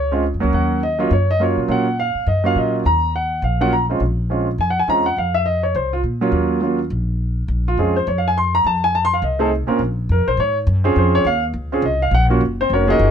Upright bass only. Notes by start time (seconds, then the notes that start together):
Already playing: C#2
0.34 F2
0.43 C#2
0.53 D#2
1.11 F#2
1.57 A#2
1.68 A#2
2.15 muted upright bass stroke
2.26 F#2
2.55 A#2
2.85 D#2
3.42 A#1
4.00 A#1
4.58 F2
4.88 E2
5.17 F2
5.75 C2
6.03 A#2
6.32 D#2
6.90 A#1
7.48 A#1
7.77 F2
8.07 F2
8.64 F2
9.22 C2
9.68 muted upright bass stroke
9.79 A#1
10.09 F2
10.18 C#2
10.27 A#1
10.37 G#2
10.67 F#2
10.96 F2
11.25 D#2
11.54 C#2
11.82 C2
12.11 A#1
12.41 F#1
12.70 F1
12.99 F#1